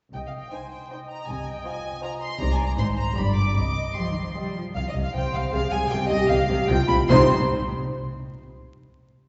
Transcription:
0.13 double bass section C2, cello section C3, viola section D#5, violin section G5
0.26 violin section F5
0.39 violin section G5
0.52 violin section D#4 C5 G#5, viola section C5
0.71 violin section G5
0.91 violin section D#4 C5 G5, viola section D#5
1.09 violin section A#5
1.28 double bass section C2, cello section C3, violin section G#5
1.47 violin section G5
1.66 violin section F4 C5 G#5
2.03 violin section F4 C5 A#5
2.22 violin section C6
2.40 double bass section C2, cello section C3, violin section D#4 C5 A#5, viola section D5
2.53 violin section G#5
2.66 violin section A#5
2.78 double bass section G#1, cello section G#2, violin section D#4 C5 C6, viola section C5
2.97 violin section A#5
3.17 double bass section G1, cello section G2, violin section G4 D5 B5, viola section D5
3.36 violin section D6
3.56 double bass section C2, cello section C3, viola section D#5, violin section D6
3.96 cello section F3, violin section G4 D#5 C6
4.10 cello section D#3
4.23 cello section F3
4.36 cello section G3, violin section G4 D#5
4.56 cello section F3
4.75 double bass section C2, cello section C3, violin section F5
4.88 violin section D#5
4.94 double bass section C2, cello section C3
5.01 violin section F5
5.14 double bass section C2, cello section C3, viola section C5, violin section G5
5.33 double bass section C2, cello section C3, violin section F5
5.52 double bass section C2, cello section C3, viola section G#4, violin section F5
5.71 double bass section C2, cello section C3, violin section G#5
5.90 double bass section C2, cello section C3, viola section G4, violin section G5
6.09 double bass section C2, cello section C3, violin section D#5
6.28 double bass section C2, cello section C3, violin section F5
6.48 double bass section C2, cello section C3
6.67 double bass section C2, cello section C3, viola section F4, violin section G5
6.88 double bass section C2, cello section C3, violin section B5
7.09 double bass section C2, cello section C3, viola section D#4 C5, violin section C5 C6

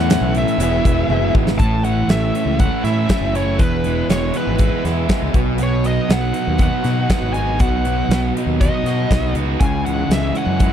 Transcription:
Already playing: fingered electric bass E2, distorted electric guitar A2 E3 A3 C#4 E4, tonewheel organ C#4 E4 A4 E5, lead electric guitar F#5
0.09 grand piano E4 A4 C#5 F#5, snare, closed hi-hat
0.21 fingered electric bass B1
0.35 lead electric guitar E5, closed hi-hat
0.48 closed hi-hat
0.58 fingered electric bass E1, distorted electric guitar E2 B2 E3 G#3 B3 E4, tonewheel organ B3 G#4 E5, grand piano E4 G#4 B4 E5, closed hi-hat
0.62 distorted electric guitar E3 G#3 B3 E4, tonewheel organ E4
0.85 fingered electric bass E1, kick, closed hi-hat
1.09 fingered electric bass F#1, grand piano E4 G#4 B4 E5, high tom
1.35 fingered electric bass G#1, kick
1.47 snare
1.59 fingered electric bass A1, distorted electric guitar A2, tonewheel organ C#4 E4 A4 E5, lead electric guitar A5, kick, closed hi-hat
1.84 distorted electric guitar E3 A3, lead electric guitar F#5, closed hi-hat
2.08 fingered electric bass A1, distorted electric guitar E3 A3, lead electric guitar E5, snare, closed hi-hat
2.34 distorted electric guitar C#4, closed hi-hat
2.46 fingered electric bass C#2
2.59 distorted electric guitar A3 E4, lead electric guitar F#5, kick, closed hi-hat
2.84 fingered electric bass A2, distorted electric guitar C#4 E4, lead electric guitar E5, snare, closed hi-hat
3.09 distorted electric guitar A3 C#4, kick, snare, closed hi-hat
3.21 fingered electric bass F#1
3.35 distorted electric guitar C#4 E4, lead electric guitar C#5, closed hi-hat
3.59 fingered electric bass E1, distorted electric guitar E2, tonewheel organ B3 E4 G#4 E5, lead electric guitar B4, kick, closed hi-hat
3.84 distorted electric guitar E3 G#3, closed hi-hat
4.09 fingered electric bass E1, distorted electric guitar E3 G#3, lead electric guitar C#5, snare, closed hi-hat
4.33 distorted electric guitar B3, lead electric guitar B4, closed hi-hat
4.47 fingered electric bass G#1
4.58 distorted electric guitar G#3 E4, kick, closed hi-hat
4.83 fingered electric bass E2, distorted electric guitar B3 E4, snare, closed hi-hat
5.08 distorted electric guitar G#3 B3, kick, snare, closed hi-hat
5.22 fingered electric bass C#2
5.34 fingered electric bass B1, distorted electric guitar B2, tonewheel organ B3 D#4 F#4 D#5, kick, closed hi-hat
5.58 distorted electric guitar B2, closed hi-hat
5.63 lead electric guitar C#5
5.84 distorted electric guitar F#3 B3, lead electric guitar D#5, closed hi-hat
6.08 fingered electric bass B1, distorted electric guitar F#3 B3, lead electric guitar F#5, snare, closed hi-hat
6.33 distorted electric guitar D#4, closed hi-hat
6.47 fingered electric bass D#2
6.58 distorted electric guitar B3 F#4, kick, closed hi-hat
6.62 lead electric guitar F#5
6.83 fingered electric bass B2, distorted electric guitar D#4 F#4, snare, closed hi-hat
7.09 distorted electric guitar B3 D#4, lead electric guitar F#5, kick, snare, closed hi-hat
7.21 fingered electric bass G#1
7.33 distorted electric guitar D#4 F#4, lead electric guitar G#5, closed hi-hat
7.59 fingered electric bass B1, distorted electric guitar B2, lead electric guitar F#5, kick, closed hi-hat
7.85 distorted electric guitar F#3 B3, closed hi-hat
8.08 fingered electric bass B1, distorted electric guitar F#3 B3, snare, closed hi-hat
8.35 distorted electric guitar D#4, closed hi-hat
8.46 fingered electric bass D#2
8.60 distorted electric guitar B3 F#4, lead electric guitar D#5, kick, closed hi-hat
8.83 fingered electric bass B2, distorted electric guitar D#4 F#4, snare, closed hi-hat
9.11 fingered electric bass B1, distorted electric guitar B3 D#4, kick, snare, closed hi-hat
9.33 fingered electric bass C#2, distorted electric guitar D#4 F#4, closed hi-hat
9.60 fingered electric bass C#2, distorted electric guitar C#3, tonewheel organ C#4 E4 G#4 E5, lead electric guitar G#5, kick, closed hi-hat
9.85 distorted electric guitar E3 G#3, lead electric guitar F#5, closed hi-hat
10.09 fingered electric bass C#2, distorted electric guitar E3, lead electric guitar E5, snare, closed hi-hat
10.13 distorted electric guitar G#3
10.35 distorted electric guitar C#4, lead electric guitar F#5, closed hi-hat
10.46 fingered electric bass F#2
10.60 distorted electric guitar G#3 E4, kick, closed hi-hat

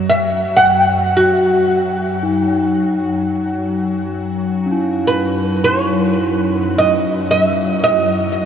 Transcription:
Already playing: ambient pad F#2 F#3
0.09 oud E5
0.57 oud F#5
1.17 oud F#4
2.23 singing bowl D#4
3.92 ambient pad F#2 F#3
4.66 singing bowl C#4
4.72 singing bowl E4
5.07 oud B4
5.64 oud C#5
6.78 oud D#5
7.31 oud D#5
7.42 oud E5
7.84 oud D#5

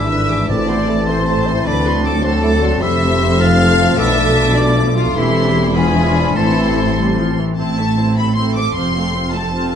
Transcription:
Already playing: double bass section G#1, cello section G#2, harp G#2 G#3 D4 B4, viola section E3 G#4, french horn section E3 D4, bassoon D4, clarinet E4, violin section E5 D6, oboe B5, flute E6
0.10 viola section D3 B4, harp E4, violin section E6
0.30 viola section E3 G#4, harp D4, violin section D6
0.49 double bass section A1, cello section A2, harp A2, timpani A2, viola section A3 A4, french horn section C4, bassoon C4, violin section D5 A5, oboe A5, flute D6
0.68 viola section E3 C5, harp E3, bassoon B3, violin section C6
0.88 viola section A3 A4, bassoon A3, harp C4, violin section A5
1.07 viola section E3 C5, bassoon A3, harp A4, violin section C5 C6, flute C6
1.27 viola section A3 A4, bassoon C4, harp E4, violin section A5
1.47 viola section E3 C5, harp C4, bassoon E4, violin section C6
1.66 cello section D2, double bass section D2, harp D3, french horn section F#3, viola section A3 A4, bassoon D4, violin section B4 D6, oboe A5, flute B5
1.85 viola section F#3 F#4, harp A3, violin section C6
2.04 viola section A3 A4, harp F#4, violin section A4 D6, flute A5
2.24 viola section F#3 F#4, bassoon C4, violin section A4 C6, clarinet A4, harp C5, flute A5, oboe A5
2.43 viola section A3 A4, bassoon E4, harp A4, violin section D6
2.63 viola section F#3 F#4, bassoon D4, harp F#4, violin section C6
2.82 double bass section F1, cello section F2, harp F3, viola section F3 A4, french horn section A3 C4, bassoon C4, clarinet G4, violin section E5 C6, oboe B5, flute E6
3.02 harp A3
3.21 harp F4
3.40 bassoon C4, clarinet F4, harp C5, violin section F5, oboe A5, flute F6
3.60 harp A4
3.79 harp F4
3.98 double bass section B1, cello section B2, harp B2, bassoon B3, french horn section D4, clarinet A4, violin section E5 D6, oboe A5, flute E6
4.18 harp F3, bassoon A3
4.38 bassoon A3, harp D4
4.57 harp A4, violin section D5, flute D6
4.77 harp F4
4.96 harp D4, violin section F4, flute F5
5.16 double bass section E1, cello section E2, harp E3, viola section E3 A4, french horn section A3 C4, violin section E4 C6, clarinet G4, flute E5, oboe B5
5.36 harp C4
5.46 french horn section G3
5.56 harp C4 E4
5.75 viola section E3 F4, harp E3, french horn section F3 D4, bassoon B3, clarinet F4, violin section G#4 B5, flute G#5
5.96 harp D4, bassoon E4
6.16 harp D4 F4, bassoon D4
6.36 double bass section A1, cello section A2, harp A2, french horn section E3 C4, viola section E3 E4, bassoon C4, clarinet E4, violin section A4 C6, flute A5, oboe A5
6.57 harp E3
6.77 harp C4
6.98 viola section G3, harp A4
7.18 viola section F3, harp E4
7.38 viola section E3, harp C4
7.58 double bass section A1, cello section A2, harp A2, viola section C4 E4, violin section C5 A5
7.78 harp A3, viola section A3 C4, violin section A4 E5
7.97 viola section C4 E4, harp C4, violin section C5
8.17 viola section A3 C4, harp E4, violin section A4 E5 B5
8.35 viola section C4 E4, harp A4, violin section C5 C6
8.55 viola section A3 C4, harp C4, violin section A4 E5 D6
8.75 double bass section F1, cello section F2, harp F2, viola section C4 F4, violin section C5 C6
8.94 viola section A3 C4, harp A3, violin section A4 F5
9.14 harp C4, viola section C4 F4, violin section C5
9.33 viola section A3 C4, harp F4, violin section A4 F5 A5
9.53 viola section C4 F4, harp A4, violin section C5
9.72 harp C4

